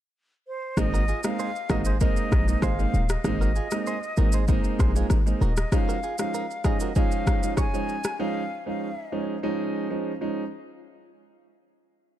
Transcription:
0.47 flute C5
0.77 808-style bass G#1, grand piano G#3 A#3 C4 D#4, flute D#5, kick, cross-stick, shaker
0.94 clean electric guitar F#4 A#4, shaker
1.08 clean electric guitar F4 G#4, shaker
1.23 grand piano G#3 A#3 C4 D#4, flute F5, cross-stick, shaker
1.39 clean electric guitar G#4 C5, shaker
1.56 shaker
1.69 808-style bass G#1, grand piano G#3 A#3 C4 D#4, clean electric guitar F#4 A#4, flute D#5, kick, cross-stick, shaker
1.85 clean electric guitar G#4 C5, shaker
2.01 grand piano G#3 A#3 C4 D#4, clean electric guitar D#4 A#4, flute D#5, kick, shaker
2.17 shaker
2.32 808-style bass A#1, kick, cross-stick, shaker
2.48 grand piano G#3 A#3 C4 D#4, shaker
2.62 808-style bass G#1, clean electric guitar G#4 C5, flute F5, kick, cross-stick, shaker
2.79 grand piano G#3 A#3 C4 D#4, shaker
2.94 808-style bass D#1, shaker
3.09 flute D#5, cross-stick, shaker
3.24 808-style bass G#1, grand piano G#3 A#3 C4 D#4, kick, cross-stick, shaker
3.41 clean electric guitar F#4 A#4, shaker
3.56 clean electric guitar F4 G#4, shaker
3.71 grand piano G#3 A#3 C4 D#4, cross-stick, shaker
3.87 clean electric guitar G#4 C5, shaker
4.03 shaker
4.17 808-style bass G#1, grand piano G#3 A#3 C4 D#4, clean electric guitar F#4 A#4, shaker
4.32 clean electric guitar G#4 C5, shaker
4.48 grand piano G#3 A#3 C4 D#4, clean electric guitar D#4 A#4, kick, shaker
4.64 shaker
4.79 808-style bass A#1, clean electric guitar G#4 C5, kick, cross-stick, shaker
4.95 grand piano G#3 A#3 C4 D#4, clean electric guitar F4 G#4, shaker
5.10 808-style bass G#1, cross-stick, shaker
5.26 grand piano G#3 A#3 C4 D#4, shaker
5.41 808-style bass D#1, clean electric guitar F#4 A#4, flute D#5, shaker
5.57 cross-stick, shaker
5.72 grand piano F3 G#3 C#4 D#4, flute F5, kick, cross-stick, shaker
5.89 clean electric guitar F#4 A#4, shaker
6.03 clean electric guitar F4 G#4, shaker
6.18 grand piano F3 G#3 C#4 D#4, flute F5, cross-stick, shaker
6.34 clean electric guitar F4 A#4, shaker
6.51 shaker
6.64 grand piano F3 G#3 C#4 D#4, clean electric guitar F4 G#4, flute D#5, kick, cross-stick, shaker
6.80 clean electric guitar F#4 A#4, shaker
6.95 grand piano F3 G#3 C#4 D#4, clean electric guitar F4 G#4, flute F5, kick, shaker
7.12 shaker
7.27 kick, cross-stick, shaker
7.43 grand piano F3 G#3 C#4 D#4, shaker
7.57 clean electric guitar G#4 C#5, flute G#5, kick, cross-stick, shaker
7.73 grand piano F3 G#3 C#4 D#4, shaker
7.89 shaker
8.04 cross-stick, shaker
8.19 grand piano F3 G#3 C#4 D#4, flute F5
8.66 grand piano F3 G#3 C#4 D#4, flute F5
9.12 grand piano F3 G#3 C#4 D#4
9.43 grand piano F3 G#3 C#4 D#4
9.90 grand piano F3 G#3 C#4 D#4
10.21 grand piano F3 G#3 C#4 D#4

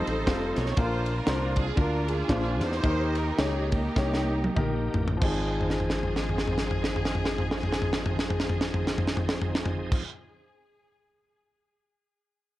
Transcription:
Already playing: tonewheel organ F3 A3 C4 D#4 G4, grand piano G3 C4 D#4 F4 A4, string section D#4 A4 C5
0.07 fingered electric bass A1, ride
0.26 fingered electric bass F1, grand piano G3 C4 D#4 F4 A4, kick, snare, ride
0.56 fingered electric bass B1, string section C#5, snare, ride
0.66 snare
0.76 fingered electric bass A#1, grand piano A#2 D4 F4 A#4, tonewheel organ A#3 D4 F4, string section F4 C5, kick, ride
1.06 ride
1.18 string section D4 F4 A#4
1.26 fingered electric bass C2, grand piano D4 F4 C5, snare, ride
1.56 string section G#4, kick, ride
1.76 fingered electric bass D2, grand piano D4 F4 A#4, string section D4 F4 A#4, kick, ride
2.08 string section D4 F4 G#4, ride
2.28 fingered electric bass A#1, grand piano D4 F4 C5, kick, snare, ride
2.61 fingered electric bass E2, string section D#4 G4 C5, snare, ride
2.72 snare
2.82 fingered electric bass D#2, grand piano D#3 D#4 G4 A#4, tonewheel organ A#3 D#4 G4, kick, ride
3.15 string section A#4, ride
3.38 fingered electric bass C#2, grand piano D#4 G4 C#5, string section G#4, snare, ride
3.72 string section A#3 D#4 G4, kick, ride
3.96 fingered electric bass C2, grand piano D#4 G4 C#5, kick, snare
4.14 snare
4.44 high tom
4.55 fingered electric bass A#1, grand piano D#4 G4 A#4, kick, mid tom
4.95 fingered electric bass A1, floor tom
5.08 floor tom
5.17 grand piano G#1 F3 C4
5.22 fingered electric bass G#1, tonewheel organ F3 C4 D#4 G#4, grand piano D#4 G#4, string section G#4, kick, crash
5.61 floor tom
5.70 snare
5.80 floor tom
5.90 snare
6.03 floor tom
6.16 snare
6.29 floor tom
6.38 snare
6.47 floor tom
6.58 snare
6.71 floor tom
6.84 snare
6.96 floor tom
7.05 snare
7.15 floor tom
7.25 snare
7.38 floor tom
7.51 snare
7.63 floor tom
7.72 snare
7.82 floor tom
7.93 snare
8.06 floor tom
8.19 snare
8.31 floor tom
8.40 snare
8.50 floor tom
8.61 snare
8.74 floor tom
8.87 snare
8.98 floor tom
9.08 snare
9.17 floor tom
9.29 snare
9.42 floor tom
9.55 snare
9.66 floor tom
9.92 kick, crash

